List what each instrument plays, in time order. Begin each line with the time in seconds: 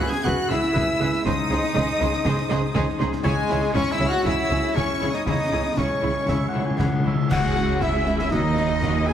Already playing: harp C#3 G#3 B3 E4 G#4 B4
0.00 viola section G#3 E4, violin section G#4 B4, oboe B4, harp E5
0.05 french horn section G#4, trumpet G#4, flute G#5, violin section G#6
0.22 double bass section C#2, cello section C#3, viola section G#3 E4, french horn section F#4, trumpet F#4, clarinet G#4, violin section G#4 F#6, harp E5, flute F#5
0.26 violin section B4, oboe B4, concert bass drum, snare
0.37 harp B4
0.47 double bass section C#2, cello section C#3, viola section G#3, trumpet E4, french horn section E4, clarinet G#4, harp G#4, violin section G#4 B4 E6, oboe B4, flute E5, snare
0.51 viola section E4
0.62 harp E4, snare
0.72 double bass section C#2, cello section C#3, viola section G#3 E4, harp B3, clarinet G#4, violin section G#4 B4, oboe B4, concert bass drum, snare
0.86 harp G#3
0.99 double bass section C#2, cello section C#3, viola section G#3 E4, harp B3, clarinet G#4, oboe B4, snare
1.03 violin section G#4 B4
1.13 harp G#3, snare
1.25 double bass section C#2, harp C#3, cello section C#3, timpani C#3, viola section G#3 D#4, french horn section D#4, trumpet D#4, clarinet G#4, violin section G#4 C5 D#6, oboe C5, flute D#5, concert bass drum, snare
1.37 harp G#3
1.49 double bass section C#2, cello section C#3, viola section G#3 D#4, harp C4, clarinet G#4, violin section G#4 C5, oboe C5, snare
1.62 harp D#4, snare
1.74 double bass section C#2, cello section C#3, viola section G#3 D#4, harp G#4, violin section G#4 C5, clarinet G#4, oboe C5, concert bass drum, snare
1.87 harp C5
1.99 double bass section C#2, cello section C#3, viola section G#3 D#4, clarinet G#4, violin section G#4 C5, oboe C5, snare
2.12 harp G#5, snare
2.25 double bass section C#2, cello section C#3, viola section G#3 D#4, clarinet G#4, violin section G#4 C5, oboe C5, harp D#5, concert bass drum, snare
2.36 harp C5, snare
2.49 double bass section C#2, cello section C#3, viola section G#3 D#4, harp G#4, clarinet G#4, violin section G#4 C5, oboe C5, snare
2.61 harp D#4
2.74 double bass section C#2, cello section C#3, viola section G#3 D#4, harp C4, violin section G#4 C5, clarinet G#4, oboe C5, concert bass drum, snare
2.86 harp G#3
2.98 double bass section C#2, cello section C#3, viola section G#3 D#4, harp C4, violin section G#4 C5, clarinet G#4, oboe C5, snare
3.13 harp G#3, snare
3.24 double bass section C#2, harp C#3, timpani C#3, cello section C#3, viola section G#3 E4, trumpet G#3, french horn section G#3, clarinet E4, flute G#4, violin section G#4 G#5, oboe C#5, concert bass drum, snare
3.28 violin section C#5
3.38 harp G#3
3.49 double bass section C#2, cello section C#3, viola section G#3 E4, harp C#4, clarinet E4, violin section G#4 C#5, oboe C#5, snare
3.62 harp E4, snare
3.74 double bass section C#2, cello section C#3, viola section G#3 E4, french horn section C#4, trumpet C#4, clarinet E4, harp G#4, violin section G#4 C#5 C#6, flute C#5, oboe C#5, concert bass drum, snare
3.87 harp C#5
3.91 trumpet E4, french horn section E4, flute E5, violin section E6
4.00 double bass section C#2, cello section C#3, viola section G#3 E4, clarinet E4, violin section G#4 C#5, oboe C#5
4.07 trumpet F#4, french horn section F#4, flute F#5, violin section F#6
4.11 harp G#5
4.23 double bass section C#2, cello section C#3, viola section G#3 E4, clarinet E4, trumpet E4, french horn section E4, violin section G#4 C#5 E6, oboe C#5, flute E5, concert bass drum, snare
4.37 harp C#5
4.48 double bass section C#2, cello section C#3, viola section G#3 E4, clarinet E4, harp G#4, violin section G#4 C#5, oboe C#5, snare
4.62 harp E4, snare
4.73 double bass section C#2, viola section G#3 E4, harp C#4, french horn section C#4, trumpet C#4, clarinet E4, flute C#5, violin section C#6, concert bass drum, snare
4.77 cello section C#3, violin section G#4 C#5, oboe C#5
4.86 harp G#3
4.98 double bass section C#2, cello section C#3, viola section G#3 E4, harp C#4, clarinet E4, violin section G#4 C#5, snare
5.04 oboe C#5
5.13 harp G#3, french horn section D#4, trumpet D#4, flute D#5, violin section D#6, snare
5.25 double bass section C#2, harp C#3, timpani C#3, cello section C#3, viola section G#3 E4, trumpet D#4, clarinet E4, violin section G#4 C#5 D#6, oboe C#5, flute D#5, french horn section D#5, concert bass drum, snare
5.39 timpani C#3, harp G#3
5.51 double bass section C#2, cello section C#3, viola section G#3 E4, harp C#4, clarinet E4, violin section G#4 C#5, oboe C#5
5.56 timpani C#3
5.65 timpani C#3, harp E4
5.72 timpani C#3, clarinet E4
5.77 double bass section C#2, cello section C#3, viola section G#3 E4, trumpet C#4, french horn section C#4, violin section G#4 C#5 C#6, flute C#5, oboe C#5, concert bass drum, snare
5.87 timpani C#3
5.91 timpani C#3, harp C#5
6.01 double bass section C#2, timpani C#3, cello section C#3, viola section G#3 E4, clarinet E4, violin section G#4 C#5, harp E5
6.10 timpani C#3
6.15 timpani C#3, harp G#5
6.25 double bass section C#2, timpani C#3, clarinet E4, violin section G#4 C#5, harp E5, oboe E5, concert bass drum, snare
6.29 cello section C#3, timpani C#3, viola section G#3 E4
6.40 timpani C#3, harp C#5
6.48 timpani C#3, clarinet E4, oboe F#5
6.53 double bass section C#2, cello section C#3, timpani C#3, viola section G#3 E4, violin section G#4 C#5, harp G#4
6.63 timpani C#3, oboe G#5
6.67 timpani C#3, harp E4
6.78 double bass section C#2, timpani C#3, cello section C#3, viola section G#3 E4, harp C#4, clarinet E4, violin section G#4 C#5, oboe F#5, concert bass drum, snare
6.84 timpani C#3
6.92 timpani C#3, harp G#3
6.99 timpani C#3
7.04 double bass section C#2, cello section C#3, timpani C#3, viola section G#3 E4, harp C#4, clarinet E4, violin section G#4 C#5, oboe E5
7.15 harp C#3, timpani C#3
7.20 harp G#3 C#4 E4
7.28 cello section C#2, double bass section C#2, timpani C#3, viola section G#3 E4, trumpet F#4, french horn section F#4, harp G#4, violin section F#5, oboe F#5, flute F#5, concert bass drum, snare, crash
7.44 viola section C#4 G#4
7.56 viola section G#3 E4, snare
7.67 viola section C#4 G#4
7.80 viola section G#3 E4, french horn section E4, trumpet E4, flute E5, violin section E5, oboe E5, concert bass drum, snare
7.93 viola section C#4 G#4
8.06 viola section G#3 E4, snare
8.14 harp D#3
8.18 harp A#3, viola section C#4 G#4, trumpet E4, french horn section E4, oboe E5, flute E5, violin section E5, snare
8.23 harp F#4
8.28 double bass section D#2, cello section D#2, viola section F#3 F#4, french horn section D#4, trumpet D#4, harp D#5, violin section D#5, oboe D#5, flute D#5, concert bass drum, snare
8.43 viola section A#3 D#4
8.55 viola section F#3 F#4, snare
8.70 viola section A#3 D#4
8.82 viola section F#3 F#4, concert bass drum, snare
8.95 viola section A#3 D#4
9.06 viola section F#3 F#4, french horn section G#4, trumpet G#4, flute G#5, violin section G#5, oboe G#5